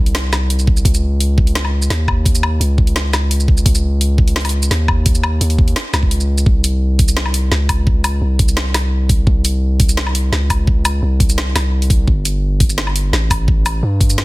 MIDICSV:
0, 0, Header, 1, 3, 480
1, 0, Start_track
1, 0, Tempo, 350877
1, 1161, Time_signature, 4, 2, 24, 8
1, 19489, End_track
2, 0, Start_track
2, 0, Title_t, "808-style bass"
2, 0, Program_c, 0, 38
2, 0, Note_on_c, 0, 36, 95
2, 1142, Note_off_c, 0, 36, 0
2, 1163, Note_on_c, 0, 37, 98
2, 2584, Note_off_c, 0, 37, 0
2, 2601, Note_on_c, 0, 39, 99
2, 3543, Note_off_c, 0, 39, 0
2, 3560, Note_on_c, 0, 37, 96
2, 4982, Note_off_c, 0, 37, 0
2, 5003, Note_on_c, 0, 37, 102
2, 6424, Note_off_c, 0, 37, 0
2, 6438, Note_on_c, 0, 39, 98
2, 7381, Note_off_c, 0, 39, 0
2, 7397, Note_on_c, 0, 39, 98
2, 7861, Note_off_c, 0, 39, 0
2, 8115, Note_on_c, 0, 37, 98
2, 8820, Note_off_c, 0, 37, 0
2, 8841, Note_on_c, 0, 36, 103
2, 10263, Note_off_c, 0, 36, 0
2, 10278, Note_on_c, 0, 37, 99
2, 11221, Note_off_c, 0, 37, 0
2, 11236, Note_on_c, 0, 36, 94
2, 12660, Note_off_c, 0, 36, 0
2, 12678, Note_on_c, 0, 36, 97
2, 14101, Note_off_c, 0, 36, 0
2, 14120, Note_on_c, 0, 37, 96
2, 15062, Note_off_c, 0, 37, 0
2, 15081, Note_on_c, 0, 36, 95
2, 15783, Note_off_c, 0, 36, 0
2, 15802, Note_on_c, 0, 36, 97
2, 16503, Note_off_c, 0, 36, 0
2, 16520, Note_on_c, 0, 31, 97
2, 17942, Note_off_c, 0, 31, 0
2, 17956, Note_on_c, 0, 33, 95
2, 18900, Note_off_c, 0, 33, 0
2, 18917, Note_on_c, 0, 43, 97
2, 19489, Note_off_c, 0, 43, 0
2, 19489, End_track
3, 0, Start_track
3, 0, Title_t, "Drums"
3, 87, Note_on_c, 9, 42, 35
3, 202, Note_off_c, 9, 42, 0
3, 202, Note_on_c, 9, 38, 123
3, 202, Note_on_c, 9, 42, 79
3, 339, Note_off_c, 9, 38, 0
3, 339, Note_off_c, 9, 42, 0
3, 447, Note_on_c, 9, 38, 62
3, 447, Note_on_c, 9, 77, 52
3, 447, Note_on_c, 9, 82, 36
3, 583, Note_off_c, 9, 38, 0
3, 583, Note_off_c, 9, 77, 0
3, 583, Note_off_c, 9, 82, 0
3, 686, Note_on_c, 9, 42, 66
3, 808, Note_on_c, 9, 82, 35
3, 823, Note_off_c, 9, 42, 0
3, 922, Note_on_c, 9, 36, 109
3, 945, Note_off_c, 9, 82, 0
3, 1050, Note_on_c, 9, 82, 60
3, 1059, Note_off_c, 9, 36, 0
3, 1163, Note_on_c, 9, 36, 117
3, 1168, Note_on_c, 9, 42, 77
3, 1186, Note_off_c, 9, 82, 0
3, 1290, Note_on_c, 9, 82, 63
3, 1300, Note_off_c, 9, 36, 0
3, 1305, Note_off_c, 9, 42, 0
3, 1427, Note_off_c, 9, 82, 0
3, 1648, Note_on_c, 9, 42, 60
3, 1785, Note_off_c, 9, 42, 0
3, 1884, Note_on_c, 9, 36, 106
3, 2013, Note_on_c, 9, 42, 34
3, 2021, Note_off_c, 9, 36, 0
3, 2126, Note_off_c, 9, 42, 0
3, 2126, Note_on_c, 9, 38, 116
3, 2126, Note_on_c, 9, 42, 75
3, 2253, Note_on_c, 9, 77, 36
3, 2263, Note_off_c, 9, 38, 0
3, 2263, Note_off_c, 9, 42, 0
3, 2389, Note_off_c, 9, 77, 0
3, 2489, Note_on_c, 9, 82, 65
3, 2604, Note_on_c, 9, 38, 63
3, 2604, Note_on_c, 9, 42, 61
3, 2626, Note_off_c, 9, 82, 0
3, 2741, Note_off_c, 9, 38, 0
3, 2741, Note_off_c, 9, 42, 0
3, 2846, Note_on_c, 9, 36, 62
3, 2848, Note_on_c, 9, 77, 48
3, 2983, Note_off_c, 9, 36, 0
3, 2985, Note_off_c, 9, 77, 0
3, 3085, Note_on_c, 9, 36, 107
3, 3091, Note_on_c, 9, 42, 78
3, 3213, Note_on_c, 9, 82, 69
3, 3222, Note_off_c, 9, 36, 0
3, 3228, Note_off_c, 9, 42, 0
3, 3327, Note_on_c, 9, 77, 78
3, 3350, Note_off_c, 9, 82, 0
3, 3464, Note_off_c, 9, 77, 0
3, 3569, Note_on_c, 9, 42, 60
3, 3706, Note_off_c, 9, 42, 0
3, 3804, Note_on_c, 9, 36, 101
3, 3929, Note_on_c, 9, 42, 36
3, 3941, Note_off_c, 9, 36, 0
3, 4047, Note_off_c, 9, 42, 0
3, 4047, Note_on_c, 9, 38, 109
3, 4047, Note_on_c, 9, 42, 72
3, 4183, Note_off_c, 9, 38, 0
3, 4183, Note_off_c, 9, 42, 0
3, 4288, Note_on_c, 9, 38, 61
3, 4288, Note_on_c, 9, 77, 51
3, 4288, Note_on_c, 9, 82, 40
3, 4425, Note_off_c, 9, 38, 0
3, 4425, Note_off_c, 9, 77, 0
3, 4425, Note_off_c, 9, 82, 0
3, 4527, Note_on_c, 9, 42, 62
3, 4651, Note_on_c, 9, 82, 37
3, 4664, Note_off_c, 9, 42, 0
3, 4763, Note_on_c, 9, 36, 100
3, 4788, Note_off_c, 9, 82, 0
3, 4889, Note_on_c, 9, 82, 65
3, 4900, Note_off_c, 9, 36, 0
3, 5003, Note_on_c, 9, 36, 109
3, 5004, Note_on_c, 9, 42, 83
3, 5025, Note_off_c, 9, 82, 0
3, 5128, Note_on_c, 9, 82, 64
3, 5140, Note_off_c, 9, 36, 0
3, 5141, Note_off_c, 9, 42, 0
3, 5265, Note_off_c, 9, 82, 0
3, 5485, Note_on_c, 9, 42, 66
3, 5622, Note_off_c, 9, 42, 0
3, 5721, Note_on_c, 9, 36, 101
3, 5850, Note_on_c, 9, 42, 37
3, 5857, Note_off_c, 9, 36, 0
3, 5963, Note_off_c, 9, 42, 0
3, 5963, Note_on_c, 9, 38, 110
3, 5963, Note_on_c, 9, 42, 36
3, 6026, Note_off_c, 9, 42, 0
3, 6026, Note_on_c, 9, 42, 43
3, 6085, Note_off_c, 9, 42, 0
3, 6085, Note_on_c, 9, 42, 58
3, 6085, Note_on_c, 9, 77, 38
3, 6100, Note_off_c, 9, 38, 0
3, 6145, Note_off_c, 9, 42, 0
3, 6145, Note_on_c, 9, 42, 68
3, 6222, Note_off_c, 9, 77, 0
3, 6282, Note_off_c, 9, 42, 0
3, 6328, Note_on_c, 9, 82, 72
3, 6443, Note_on_c, 9, 38, 58
3, 6443, Note_on_c, 9, 42, 62
3, 6465, Note_off_c, 9, 82, 0
3, 6580, Note_off_c, 9, 38, 0
3, 6580, Note_off_c, 9, 42, 0
3, 6680, Note_on_c, 9, 36, 60
3, 6681, Note_on_c, 9, 77, 54
3, 6817, Note_off_c, 9, 36, 0
3, 6817, Note_off_c, 9, 77, 0
3, 6919, Note_on_c, 9, 42, 84
3, 6920, Note_on_c, 9, 36, 110
3, 7042, Note_on_c, 9, 82, 67
3, 7055, Note_off_c, 9, 42, 0
3, 7057, Note_off_c, 9, 36, 0
3, 7161, Note_on_c, 9, 77, 83
3, 7179, Note_off_c, 9, 82, 0
3, 7298, Note_off_c, 9, 77, 0
3, 7401, Note_on_c, 9, 42, 63
3, 7524, Note_off_c, 9, 42, 0
3, 7524, Note_on_c, 9, 42, 36
3, 7641, Note_on_c, 9, 36, 103
3, 7661, Note_off_c, 9, 42, 0
3, 7766, Note_on_c, 9, 42, 37
3, 7777, Note_off_c, 9, 36, 0
3, 7881, Note_off_c, 9, 42, 0
3, 7881, Note_on_c, 9, 38, 113
3, 7881, Note_on_c, 9, 42, 77
3, 8017, Note_off_c, 9, 38, 0
3, 8017, Note_off_c, 9, 42, 0
3, 8121, Note_on_c, 9, 38, 60
3, 8121, Note_on_c, 9, 77, 54
3, 8121, Note_on_c, 9, 82, 39
3, 8245, Note_on_c, 9, 36, 58
3, 8257, Note_off_c, 9, 38, 0
3, 8257, Note_off_c, 9, 77, 0
3, 8257, Note_off_c, 9, 82, 0
3, 8361, Note_on_c, 9, 42, 68
3, 8382, Note_off_c, 9, 36, 0
3, 8486, Note_on_c, 9, 82, 38
3, 8498, Note_off_c, 9, 42, 0
3, 8623, Note_off_c, 9, 82, 0
3, 8724, Note_on_c, 9, 82, 67
3, 8842, Note_on_c, 9, 36, 114
3, 8861, Note_off_c, 9, 82, 0
3, 8979, Note_off_c, 9, 36, 0
3, 9084, Note_on_c, 9, 42, 83
3, 9084, Note_on_c, 9, 82, 66
3, 9220, Note_off_c, 9, 42, 0
3, 9220, Note_off_c, 9, 82, 0
3, 9563, Note_on_c, 9, 36, 103
3, 9563, Note_on_c, 9, 42, 69
3, 9687, Note_on_c, 9, 82, 66
3, 9700, Note_off_c, 9, 36, 0
3, 9700, Note_off_c, 9, 42, 0
3, 9803, Note_on_c, 9, 38, 123
3, 9823, Note_off_c, 9, 82, 0
3, 9926, Note_on_c, 9, 77, 42
3, 9940, Note_off_c, 9, 38, 0
3, 10041, Note_on_c, 9, 42, 82
3, 10063, Note_off_c, 9, 77, 0
3, 10178, Note_off_c, 9, 42, 0
3, 10282, Note_on_c, 9, 38, 59
3, 10418, Note_off_c, 9, 38, 0
3, 10522, Note_on_c, 9, 42, 72
3, 10522, Note_on_c, 9, 77, 57
3, 10523, Note_on_c, 9, 36, 61
3, 10659, Note_off_c, 9, 42, 0
3, 10659, Note_off_c, 9, 77, 0
3, 10660, Note_off_c, 9, 36, 0
3, 10763, Note_on_c, 9, 36, 116
3, 10900, Note_off_c, 9, 36, 0
3, 11001, Note_on_c, 9, 42, 85
3, 11001, Note_on_c, 9, 77, 81
3, 11001, Note_on_c, 9, 82, 64
3, 11138, Note_off_c, 9, 42, 0
3, 11138, Note_off_c, 9, 77, 0
3, 11138, Note_off_c, 9, 82, 0
3, 11481, Note_on_c, 9, 42, 69
3, 11482, Note_on_c, 9, 36, 105
3, 11604, Note_on_c, 9, 82, 67
3, 11618, Note_off_c, 9, 42, 0
3, 11619, Note_off_c, 9, 36, 0
3, 11720, Note_on_c, 9, 38, 124
3, 11741, Note_off_c, 9, 82, 0
3, 11857, Note_off_c, 9, 38, 0
3, 11962, Note_on_c, 9, 38, 65
3, 11962, Note_on_c, 9, 42, 83
3, 11962, Note_on_c, 9, 77, 54
3, 12099, Note_off_c, 9, 38, 0
3, 12099, Note_off_c, 9, 42, 0
3, 12099, Note_off_c, 9, 77, 0
3, 12440, Note_on_c, 9, 36, 110
3, 12443, Note_on_c, 9, 42, 68
3, 12577, Note_off_c, 9, 36, 0
3, 12579, Note_off_c, 9, 42, 0
3, 12680, Note_on_c, 9, 36, 118
3, 12817, Note_off_c, 9, 36, 0
3, 12923, Note_on_c, 9, 42, 78
3, 12923, Note_on_c, 9, 82, 64
3, 13060, Note_off_c, 9, 42, 0
3, 13060, Note_off_c, 9, 82, 0
3, 13402, Note_on_c, 9, 36, 113
3, 13402, Note_on_c, 9, 42, 71
3, 13528, Note_on_c, 9, 82, 67
3, 13539, Note_off_c, 9, 36, 0
3, 13539, Note_off_c, 9, 42, 0
3, 13644, Note_on_c, 9, 38, 121
3, 13665, Note_off_c, 9, 82, 0
3, 13770, Note_on_c, 9, 77, 38
3, 13781, Note_off_c, 9, 38, 0
3, 13884, Note_on_c, 9, 42, 86
3, 13907, Note_off_c, 9, 77, 0
3, 14021, Note_off_c, 9, 42, 0
3, 14126, Note_on_c, 9, 38, 66
3, 14263, Note_off_c, 9, 38, 0
3, 14363, Note_on_c, 9, 36, 62
3, 14367, Note_on_c, 9, 42, 66
3, 14367, Note_on_c, 9, 77, 51
3, 14500, Note_off_c, 9, 36, 0
3, 14504, Note_off_c, 9, 42, 0
3, 14504, Note_off_c, 9, 77, 0
3, 14602, Note_on_c, 9, 36, 121
3, 14739, Note_off_c, 9, 36, 0
3, 14844, Note_on_c, 9, 42, 82
3, 14844, Note_on_c, 9, 77, 77
3, 14844, Note_on_c, 9, 82, 67
3, 14981, Note_off_c, 9, 42, 0
3, 14981, Note_off_c, 9, 77, 0
3, 14981, Note_off_c, 9, 82, 0
3, 15323, Note_on_c, 9, 36, 109
3, 15326, Note_on_c, 9, 42, 66
3, 15450, Note_on_c, 9, 82, 64
3, 15460, Note_off_c, 9, 36, 0
3, 15463, Note_off_c, 9, 42, 0
3, 15566, Note_on_c, 9, 38, 124
3, 15587, Note_off_c, 9, 82, 0
3, 15703, Note_off_c, 9, 38, 0
3, 15808, Note_on_c, 9, 38, 66
3, 15808, Note_on_c, 9, 42, 79
3, 15808, Note_on_c, 9, 77, 52
3, 15945, Note_off_c, 9, 38, 0
3, 15945, Note_off_c, 9, 42, 0
3, 15945, Note_off_c, 9, 77, 0
3, 16171, Note_on_c, 9, 42, 36
3, 16280, Note_on_c, 9, 36, 113
3, 16284, Note_off_c, 9, 42, 0
3, 16284, Note_on_c, 9, 42, 68
3, 16417, Note_off_c, 9, 36, 0
3, 16421, Note_off_c, 9, 42, 0
3, 16519, Note_on_c, 9, 36, 114
3, 16656, Note_off_c, 9, 36, 0
3, 16762, Note_on_c, 9, 42, 76
3, 16762, Note_on_c, 9, 82, 64
3, 16899, Note_off_c, 9, 42, 0
3, 16899, Note_off_c, 9, 82, 0
3, 17240, Note_on_c, 9, 36, 108
3, 17241, Note_on_c, 9, 42, 66
3, 17367, Note_on_c, 9, 82, 71
3, 17377, Note_off_c, 9, 36, 0
3, 17378, Note_off_c, 9, 42, 0
3, 17480, Note_on_c, 9, 38, 116
3, 17503, Note_off_c, 9, 82, 0
3, 17606, Note_on_c, 9, 77, 37
3, 17617, Note_off_c, 9, 38, 0
3, 17724, Note_on_c, 9, 42, 76
3, 17743, Note_off_c, 9, 77, 0
3, 17861, Note_off_c, 9, 42, 0
3, 17965, Note_on_c, 9, 38, 64
3, 18102, Note_off_c, 9, 38, 0
3, 18200, Note_on_c, 9, 36, 63
3, 18205, Note_on_c, 9, 42, 63
3, 18205, Note_on_c, 9, 77, 51
3, 18337, Note_off_c, 9, 36, 0
3, 18342, Note_off_c, 9, 42, 0
3, 18342, Note_off_c, 9, 77, 0
3, 18440, Note_on_c, 9, 36, 113
3, 18576, Note_off_c, 9, 36, 0
3, 18684, Note_on_c, 9, 42, 74
3, 18684, Note_on_c, 9, 77, 82
3, 18684, Note_on_c, 9, 82, 67
3, 18821, Note_off_c, 9, 42, 0
3, 18821, Note_off_c, 9, 77, 0
3, 18821, Note_off_c, 9, 82, 0
3, 19160, Note_on_c, 9, 36, 108
3, 19164, Note_on_c, 9, 42, 66
3, 19284, Note_on_c, 9, 82, 73
3, 19297, Note_off_c, 9, 36, 0
3, 19301, Note_off_c, 9, 42, 0
3, 19398, Note_on_c, 9, 38, 113
3, 19421, Note_off_c, 9, 82, 0
3, 19489, Note_off_c, 9, 38, 0
3, 19489, End_track
0, 0, End_of_file